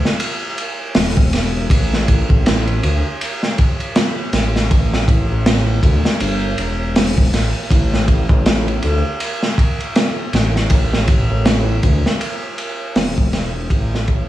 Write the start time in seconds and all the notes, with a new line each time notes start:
0.05 snare
0.20 ride
0.58 ride
0.95 E1, snare, open hi-hat
1.17 kick
1.33 snare, ride
1.70 A1, kick, ride
1.93 snare
2.08 kick, ride
2.30 A1, kick
2.46 snare, ride
2.67 ride
2.83 D2, ride
3.21 ride
3.43 snare
3.58 kick, ride
3.80 ride
3.96 snare, ride
4.33 A1, snare, ride
4.56 snare
4.71 kick, ride
4.94 snare
5.08 kick, ride
5.30 A1
5.46 snare, ride
5.83 D2, kick, ride
6.05 snare
6.20 G1, ride
6.58 E1, ride
6.96 snare, open hi-hat
7.18 kick
7.33 A1, snare, ride
7.71 A1, kick, ride
7.94 snare
8.08 kick, ride
8.29 A1, kick
8.46 snare, ride
8.68 ride
8.82 D2, ride
9.20 ride
9.43 snare
9.58 kick, ride
9.80 ride
9.96 snare, ride
10.33 A1, snare, ride
10.56 snare
10.70 kick, ride
10.93 snare
11.08 kick, ride
11.30 A1
11.46 snare, ride
11.83 D2, kick, ride
12.06 snare
12.21 ride
12.58 ride
12.96 E1, snare, open hi-hat
13.18 kick
13.33 snare, ride
13.70 A1, kick, ride
13.95 snare
14.08 kick, ride